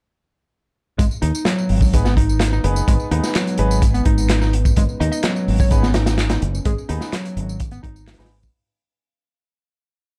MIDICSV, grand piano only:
0, 0, Header, 1, 2, 480
1, 0, Start_track
1, 0, Key_signature, 5, "minor"
1, 0, Tempo, 472441
1, 1002, Time_signature, 4, 2, 24, 8
1, 10350, End_track
2, 0, Start_track
2, 0, Title_t, "Grand piano"
2, 0, Program_c, 0, 0
2, 1967, Note_on_c, 0, 63, 74
2, 1967, Note_on_c, 0, 68, 74
2, 1967, Note_on_c, 0, 71, 90
2, 1968, Note_on_c, 0, 59, 79
2, 2102, Note_off_c, 0, 59, 0
2, 2102, Note_off_c, 0, 63, 0
2, 2102, Note_off_c, 0, 68, 0
2, 2102, Note_off_c, 0, 71, 0
2, 2683, Note_on_c, 0, 59, 85
2, 2683, Note_on_c, 0, 63, 76
2, 2683, Note_on_c, 0, 68, 76
2, 2683, Note_on_c, 0, 71, 94
2, 3134, Note_off_c, 0, 59, 0
2, 3134, Note_off_c, 0, 63, 0
2, 3134, Note_off_c, 0, 68, 0
2, 3134, Note_off_c, 0, 71, 0
2, 3162, Note_on_c, 0, 59, 72
2, 3162, Note_on_c, 0, 63, 66
2, 3162, Note_on_c, 0, 68, 65
2, 3163, Note_on_c, 0, 71, 83
2, 3380, Note_off_c, 0, 59, 0
2, 3381, Note_off_c, 0, 63, 0
2, 3381, Note_off_c, 0, 68, 0
2, 3381, Note_off_c, 0, 71, 0
2, 3644, Note_on_c, 0, 68, 97
2, 3645, Note_on_c, 0, 63, 90
2, 3645, Note_on_c, 0, 71, 108
2, 3646, Note_on_c, 0, 59, 96
2, 3862, Note_off_c, 0, 59, 0
2, 3862, Note_off_c, 0, 63, 0
2, 3862, Note_off_c, 0, 68, 0
2, 3862, Note_off_c, 0, 71, 0
2, 5802, Note_on_c, 0, 71, 91
2, 5803, Note_on_c, 0, 59, 84
2, 5804, Note_on_c, 0, 63, 75
2, 5804, Note_on_c, 0, 68, 72
2, 5939, Note_off_c, 0, 71, 0
2, 5940, Note_off_c, 0, 59, 0
2, 5940, Note_off_c, 0, 63, 0
2, 5940, Note_off_c, 0, 68, 0
2, 6998, Note_on_c, 0, 68, 66
2, 6999, Note_on_c, 0, 63, 68
2, 6999, Note_on_c, 0, 71, 79
2, 7000, Note_on_c, 0, 59, 75
2, 7219, Note_off_c, 0, 63, 0
2, 7219, Note_off_c, 0, 68, 0
2, 7219, Note_off_c, 0, 71, 0
2, 7220, Note_off_c, 0, 59, 0
2, 8321, Note_on_c, 0, 68, 77
2, 8321, Note_on_c, 0, 71, 90
2, 8322, Note_on_c, 0, 63, 74
2, 8324, Note_on_c, 0, 59, 82
2, 8458, Note_off_c, 0, 63, 0
2, 8458, Note_off_c, 0, 68, 0
2, 8458, Note_off_c, 0, 71, 0
2, 8459, Note_off_c, 0, 59, 0
2, 10350, End_track
0, 0, End_of_file